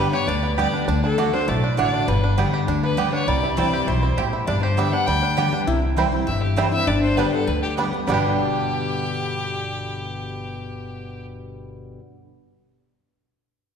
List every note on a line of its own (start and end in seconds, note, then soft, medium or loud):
0.00 0.25 G2 medium
0.00 0.12 D3 medium
0.00 0.12 G3 medium
0.00 0.40 G3 medium
0.00 0.12 B3 loud
0.00 0.27 D4 medium
0.00 0.11 G4 medium
0.00 0.11 B4 medium
0.13 0.28 B3 soft
0.13 0.27 G4 medium
0.13 0.55 G4 medium
0.13 0.29 C#5 medium
0.27 0.64 D2 medium
0.27 0.57 D3 medium
0.27 0.73 D4 medium
0.27 0.57 D5 medium
0.43 0.85 B3 medium
0.58 0.86 D3 medium
0.58 0.87 G3 medium
0.58 0.67 B3 medium
0.58 0.87 B3 medium
0.58 0.67 G4 loud
0.58 0.88 G4 medium
0.58 0.87 G4 medium
0.58 0.86 D5 medium
0.58 0.67 D5 loud
0.58 0.67 G5 medium
0.73 0.87 D4 medium
0.88 1.24 D2 medium
0.88 1.17 D3 medium
0.88 1.03 D4 medium
1.03 1.32 D4 medium
1.03 1.35 A4 loud
1.18 1.32 D3 loud
1.18 1.27 A3 medium
1.18 1.47 A3 medium
1.18 1.33 A3 medium
1.18 1.33 D4 loud
1.18 1.27 F#4 medium
1.18 1.32 F#4 loud
1.18 1.27 D5 loud
1.18 1.27 F#5 loud
1.33 1.62 D4 medium
1.33 1.48 D4 soft
1.33 1.47 F#4 medium
1.33 1.50 C5 loud
1.48 1.73 B1 medium
1.48 2.05 A2 medium
1.48 1.90 A3 medium
1.48 1.78 D5 medium
1.64 1.77 D4 medium
1.77 2.03 A1 medium
1.77 2.06 D3 medium
1.77 1.87 A3 loud
1.77 2.06 A3 medium
1.77 2.07 D4 medium
1.77 1.92 D4 medium
1.77 1.87 F#4 loud
1.77 2.07 F#4 loud
1.77 1.87 D5 medium
1.77 2.09 D5 medium
1.77 1.87 F#5 loud
1.94 2.08 D4 medium
2.08 2.44 G1 medium
2.08 2.65 G2 medium
2.08 2.38 G3 medium
2.08 2.38 B4 medium
2.24 2.65 D4 medium
2.38 2.66 D3 medium
2.38 2.66 G3 medium
2.38 3.28 G3 medium
2.38 2.47 B3 medium
2.38 2.67 B3 medium
2.38 2.47 G4 loud
2.38 2.67 G4 medium
2.38 2.47 D5 loud
2.38 2.47 G5 loud
2.54 2.98 G4 medium
2.67 3.04 D2 medium
2.67 2.96 D3 medium
2.67 3.10 D4 medium
2.83 3.25 B3 medium
2.83 3.11 B4 medium
2.97 3.26 D3 loud
2.97 3.26 G3 medium
2.97 3.07 B3 loud
2.97 3.26 B3 medium
2.97 3.07 G4 loud
2.97 3.73 G4 medium
2.97 3.27 G4 medium
2.97 3.07 D5 loud
2.97 3.07 G5 loud
3.13 3.28 D4 medium
3.13 3.29 C#5 medium
3.27 3.46 C2 medium
3.27 3.85 C3 medium
3.27 3.58 G3 medium
3.27 3.57 D5 medium
3.43 3.85 E4 medium
3.57 3.83 C2 medium
3.57 3.86 E3 medium
3.57 3.86 G3 medium
3.57 4.78 G3 medium
3.57 3.66 C4 loud
3.57 3.86 C4 medium
3.57 3.67 E4 medium
3.57 3.86 E4 loud
3.57 3.67 C5 loud
3.57 3.89 D5 medium
3.57 3.67 G5 loud
3.73 4.17 G4 medium
3.87 4.13 B1 medium
3.87 4.16 B2 medium
3.87 4.30 E4 medium
3.87 4.17 C5 medium
4.03 4.45 C4 medium
4.17 4.43 A1 medium
4.17 4.46 A2 medium
4.17 4.26 C4 medium
4.17 4.26 E4 medium
4.17 4.63 G4 medium
4.17 4.27 C5 medium
4.17 4.27 G5 loud
4.33 4.48 E4 medium
4.47 4.84 G1 medium
4.47 5.04 G2 loud
4.47 4.90 D4 medium
4.47 4.62 D5 medium
4.62 5.05 G4 medium
4.62 4.79 C5 medium
4.77 4.92 D3 medium
4.77 4.92 G3 medium
4.77 5.06 G3 medium
4.77 4.86 B3 medium
4.77 4.92 B3 medium
4.77 4.87 G4 medium
4.77 4.92 G4 loud
4.77 4.87 D5 loud
4.77 4.94 E5 medium
4.77 4.87 G5 loud
4.92 5.08 B3 medium
4.92 5.22 D4 medium
4.92 5.07 G4 medium
4.92 5.08 F#5 loud
5.06 5.44 D2 medium
5.06 5.36 D3 medium
5.06 5.50 G3 medium
5.06 5.59 G5 loud
5.23 5.52 D4 medium
5.37 5.52 D3 loud
5.37 5.52 G3 medium
5.37 5.46 B3 medium
5.37 5.52 B3 medium
5.37 5.46 G4 medium
5.37 5.67 G4 medium
5.37 5.51 G4 loud
5.37 5.47 D5 medium
5.37 5.47 G5 loud
5.52 5.67 B3 soft
5.52 5.67 D4 medium
5.52 5.67 G4 medium
5.67 6.04 C2 medium
5.67 6.24 C3 medium
5.67 6.87 E4 loud
5.97 6.11 E3 medium
5.97 6.12 G3 medium
5.97 6.04 G3 medium
5.97 6.06 C4 medium
5.97 6.12 C4 loud
5.97 6.04 C4 medium
5.97 6.06 E4 medium
5.97 6.11 E4 medium
5.97 6.05 E4 medium
5.97 6.06 C5 medium
5.97 6.07 G5 loud
6.12 6.27 C4 soft
6.12 6.26 E4 medium
6.27 6.64 G1 medium
6.27 6.84 G2 medium
6.27 6.41 E5 medium
6.42 6.59 G4 medium
6.56 6.71 E3 medium
6.56 6.72 G3 medium
6.56 6.64 G3 medium
6.56 6.66 C4 loud
6.56 6.72 C4 medium
6.56 6.64 C4 medium
6.56 6.66 E4 medium
6.56 6.71 E4 loud
6.56 6.64 E4 medium
6.56 6.72 C5 medium
6.56 6.66 C5 loud
6.56 6.67 G5 loud
6.72 6.87 C4 soft
6.72 6.86 E4 medium
6.72 6.89 E5 loud
6.87 7.24 G1 medium
6.87 7.44 G2 medium
6.87 8.03 D4 loud
6.87 7.01 D5 medium
7.02 7.19 C5 medium
7.17 7.32 D3 medium
7.17 7.32 G3 medium
7.17 7.24 G3 medium
7.17 7.26 B3 medium
7.17 7.32 B3 medium
7.17 7.24 B3 medium
7.17 7.25 D4 medium
7.17 7.26 G4 loud
7.17 7.32 G4 loud
7.17 7.32 B4 medium
7.17 7.26 D5 loud
7.17 7.27 G5 loud
7.33 7.48 B3 soft
7.33 7.47 G4 medium
7.33 7.49 A4 loud
7.47 7.84 D2 medium
7.47 7.76 D3 medium
7.47 7.62 B4 medium
7.62 7.71 G4 medium
7.77 7.92 D3 medium
7.77 7.92 G3 medium
7.77 7.84 G3 medium
7.77 7.86 B3 medium
7.77 7.92 B3 medium
7.77 7.85 B3 medium
7.77 7.85 D4 medium
7.77 7.86 G4 medium
7.77 7.92 G4 medium
7.77 7.87 D5 loud
7.77 7.87 G5 loud
7.93 8.08 B3 soft
7.93 8.07 G4 medium
8.07 11.95 G1 medium
8.07 11.99 G2 medium
8.07 11.99 B2 medium
8.07 11.99 D3 medium
8.07 11.95 G3 medium
8.07 11.99 G3 medium
8.07 11.98 B3 medium
8.07 11.96 B3 medium
8.07 12.00 B3 medium
8.07 11.94 D4 medium
8.07 11.24 G4 medium
8.07 11.99 G4 medium
8.07 12.00 G4 medium
8.07 11.99 D5 medium
8.07 11.99 G5 medium
8.12 11.97 D4 medium
8.12 11.98 G4 medium